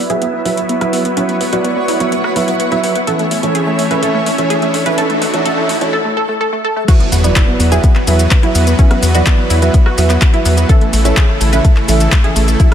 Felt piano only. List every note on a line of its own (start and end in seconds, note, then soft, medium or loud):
0.10 0.22 F#3 medium
0.10 0.22 E4 medium
0.10 0.22 B4 medium
0.10 0.22 E5 medium
0.45 0.57 F#3 loud
0.45 0.57 E4 medium
0.45 0.57 B4 medium
0.45 0.57 E5 loud
0.81 1.00 F#3 medium
0.81 1.00 E4 medium
0.81 1.00 B4 medium
0.81 1.00 E5 medium
1.17 1.36 F#3 medium
1.17 1.36 E4 medium
1.17 1.36 B4 medium
1.17 1.36 E5 medium
1.53 1.97 F#3 medium
1.53 1.97 E4 medium
1.53 1.97 B4 medium
1.53 1.97 D5 medium
2.00 2.12 F#3 medium
2.00 2.12 E4 medium
2.00 2.12 B4 medium
2.00 2.12 E5 medium
2.36 2.48 F#3 medium
2.36 2.48 E4 medium
2.36 2.48 B4 medium
2.36 2.48 E5 loud
2.72 2.91 F#3 medium
2.72 2.91 E4 medium
2.72 2.91 B4 medium
2.72 2.91 E5 loud
3.07 3.26 E3 medium
3.07 3.26 C#4 medium
3.07 3.26 A4 medium
3.07 3.26 E5 medium
3.43 3.88 E3 medium
3.43 3.88 C#4 medium
3.43 3.88 A4 medium
3.43 3.88 C#5 medium
3.91 4.01 E3 medium
3.91 4.01 C#4 medium
3.91 4.01 A4 medium
3.91 4.01 E5 medium
4.03 4.22 E3 medium
4.03 4.22 C#4 medium
4.03 4.22 A4 medium
4.03 4.22 E5 medium
4.38 4.83 E3 medium
4.38 4.83 C#4 medium
4.38 4.83 A4 medium
4.38 4.83 C#5 medium
4.86 4.96 E3 medium
4.86 4.96 C#4 medium
4.86 4.96 A4 medium
4.86 4.96 E5 medium
4.98 5.17 E3 medium
4.98 5.17 C#4 medium
4.98 5.17 A4 medium
4.98 5.17 E5 medium
5.34 5.44 E3 medium
5.34 5.44 C#4 medium
5.34 5.44 A4 medium
5.34 5.44 C#5 medium
5.46 5.65 E3 medium
5.46 5.65 C#4 medium
5.46 5.65 A4 medium
5.46 5.65 E5 medium
5.81 5.91 E3 medium
5.81 5.91 C#4 medium
5.81 5.91 A4 medium
5.81 5.91 C#5 medium
6.88 7.07 F#3 medium
6.88 7.07 E4 medium
6.88 7.07 B4 medium
6.88 7.07 E5 medium
7.24 7.69 F#3 medium
7.24 7.69 E4 medium
7.24 7.69 B4 medium
7.24 7.69 D5 medium
7.72 7.84 F#3 medium
7.72 7.84 E4 medium
7.72 7.84 B4 medium
7.72 7.84 E5 loud
8.07 8.19 F#3 medium
8.07 8.19 E4 medium
8.07 8.19 B4 medium
8.07 8.19 E5 loud
8.43 8.62 F#3 medium
8.43 8.62 E4 medium
8.43 8.62 B4 medium
8.43 8.62 E5 loud
8.79 8.98 F#3 medium
8.79 8.98 E4 medium
8.79 8.98 B4 medium
8.79 8.98 E5 medium
9.15 9.59 F#3 medium
9.15 9.59 E4 medium
9.15 9.59 B4 medium
9.15 9.59 D5 medium
9.62 9.74 F#3 medium
9.62 9.74 E4 medium
9.62 9.74 B4 medium
9.62 9.74 E5 loud
9.98 10.10 F#3 medium
9.98 10.10 E4 medium
9.98 10.10 B4 medium
9.98 10.10 E5 loud
10.34 10.53 F#3 medium
10.34 10.53 E4 medium
10.34 10.53 B4 medium
10.34 10.53 E5 loud
10.69 10.88 E3 medium
10.69 10.88 C#4 medium
10.69 10.88 A4 medium
10.69 10.88 E5 medium
11.05 11.50 E3 medium
11.05 11.50 C#4 medium
11.05 11.50 A4 medium
11.05 11.50 C#5 medium
11.53 11.65 E3 medium
11.53 11.65 C#4 medium
11.53 11.65 A4 medium
11.53 11.65 E5 loud
11.88 12.00 E3 loud
11.88 12.00 C#4 medium
11.88 12.00 A4 medium
11.88 12.00 E5 loud
12.24 12.43 E3 medium
12.24 12.43 C#4 medium
12.24 12.43 A4 medium
12.24 12.43 E5 loud
12.60 12.74 F#3 medium
12.60 12.74 D4 medium
12.60 12.74 A4 medium
12.60 12.74 E5 medium